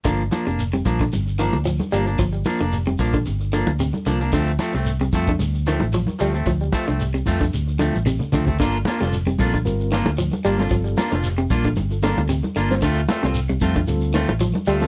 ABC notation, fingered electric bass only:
X:1
M:4/4
L:1/16
Q:"Swing 16ths" 1/4=113
K:Gm
V:1 name="Fingered electric bass" clef=bass
G,,,2 z F,,,3 B,,,2 G,,,3 D,,2 z G,,,2 | G,,,2 z F,,,3 B,,,2 G,,,3 D,,2 z C,,2 | D,,2 z C,,3 F,,2 D,,3 A,,,2 z D,,2 | D,,2 z C,,3 F,,2 D,,3 A,,,2 z D,,2 |
G,,,2 z F,,,3 B,,,2 G,,,3 D,,2 z G,,,2 | G,,,2 z F,,,3 B,,,2 G,,,3 D,,2 z G,,,2 | D,,2 z C,,3 F,,2 D,,3 A,,,2 z D,,2 |]